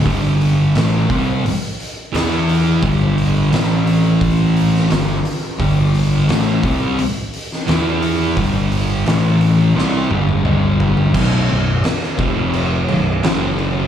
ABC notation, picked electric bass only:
X:1
M:4/4
L:1/8
Q:1/4=86
K:G
V:1 name="Picked electric bass" clef=bass
G,,,2 A,,, C,, z2 E,,2 | G,,,2 A,,,4 G,,, z | G,,,2 A,,, C,, z2 E,,2 | G,,,2 A,,,2 C,, G,,, G,,,2 |
B,,,, B,,,, z =F,,,2 B,,,, ^F,,,2 |]